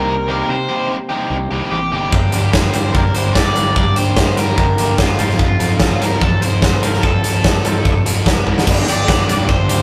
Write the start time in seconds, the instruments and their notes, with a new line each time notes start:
Already playing: fingered electric bass C2, clean electric guitar C3 G3 A#3 D#4 G4, overdriven electric guitar G3 C4 D#4 G4 A#4
0.27 clean electric guitar C3 G3 A#3 D#4 G4, overdriven electric guitar G3 C4 D#4 G4 A#4
0.49 fingered electric bass C3, overdriven electric guitar C5
0.69 overdriven electric guitar G3 C4 D#4 G4
1.09 clean electric guitar C3 G3 A#3 D#4 G4, overdriven electric guitar G3 C4 D#4 G4
1.30 fingered electric bass C2
1.51 fingered electric bass C2, overdriven electric guitar G3 C4 D#4 G4
1.71 fingered electric bass A1, overdriven electric guitar G4
1.92 fingered electric bass G1, overdriven electric guitar G3 C4 D#4 G4
2.11 fingered electric bass G1, clean electric guitar G2 D3 F3 A#3 D4 G4, kick
2.32 overdriven electric guitar G3 A#3 D4 G4, closed hi-hat
2.53 kick, snare
2.73 overdriven electric guitar G3 A#3 D4 G4 C5, closed hi-hat
2.94 fingered electric bass A#1, clean electric guitar G2 D3 F3 A#3 D4 G4, overdriven electric guitar A#4, kick
3.15 overdriven electric guitar G3 A#3 D4 G4 C5, closed hi-hat
3.25 fingered electric bass G1
3.34 overdriven electric guitar D5, kick, snare
3.56 overdriven electric guitar G3 A#3 D4 G4, closed hi-hat
3.75 clean electric guitar G2 D3 F3 A#3 D4 G4, fingered electric bass G2, overdriven electric guitar D5, kick
3.96 overdriven electric guitar G3 A#3 D4 G4 C5, closed hi-hat
4.17 kick, snare
4.37 overdriven electric guitar G3 A#3 D4 G4 A#4, snare, closed hi-hat
4.56 fingered electric bass G1, clean electric guitar G2 D3 F3 A#3 D4 G4, kick
4.78 fingered electric bass G1, overdriven electric guitar G3 A#3 D4 G4, closed hi-hat
4.98 fingered electric bass G1, overdriven electric guitar F4, kick, snare
5.18 fingered electric bass F1, clean electric guitar F3 C4 D#4 A4, overdriven electric guitar F3 C4 D#4 F4 A4, closed hi-hat
5.29 snare
5.39 kick
5.60 overdriven electric guitar F3 C4 D#4 A4, closed hi-hat
5.80 kick, snare
6.00 overdriven electric guitar F3 C4 D#4 A4 A#4, clean electric guitar F3 C4 D#4 A4, snare, closed hi-hat
6.21 fingered electric bass A1, overdriven electric guitar A4, kick
6.42 overdriven electric guitar F3 C4 D#4 A4 C5, closed hi-hat
6.52 fingered electric bass F1
6.62 kick, snare
6.81 clean electric guitar F3 C4 D#4 A4, overdriven electric guitar F3 C4 D#4 A4 A#4, closed hi-hat
6.94 snare
7.03 fingered electric bass F2, overdriven electric guitar A4, kick
7.24 overdriven electric guitar F3 C4 D#4 A4, closed hi-hat
7.44 kick, snare
7.64 overdriven electric guitar F3 C4 D#4 A4, clean electric guitar F3 C4 D#4 A4, closed hi-hat
7.85 fingered electric bass F1, kick
8.05 fingered electric bass F1, overdriven electric guitar F3 C4 D#4 A4, closed hi-hat
8.26 fingered electric bass F1, kick, snare
8.47 overdriven electric guitar F3 C4 D#4 A4, kick
8.58 snare
8.66 fingered electric bass G1, clean electric guitar G2, string machine F3 A#3 G4, overdriven electric guitar G3 A#3 D4 G4, kick, crash
8.86 clean electric guitar G4, overdriven electric guitar D5, muted overdriven electric guitar stroke, closed hi-hat
9.08 clean electric guitar D4, muted overdriven electric guitar stroke, kick, snare
9.27 fingered electric bass F1, overdriven electric guitar G3 A#3 D4 G4, clean electric guitar G4, snare, closed hi-hat
9.49 clean electric guitar D4, overdriven electric guitar C5, muted overdriven electric guitar stroke, kick
9.58 fingered electric bass G1
9.68 fingered electric bass D2, clean electric guitar F3, overdriven electric guitar G3 A#3 D4 G4, closed hi-hat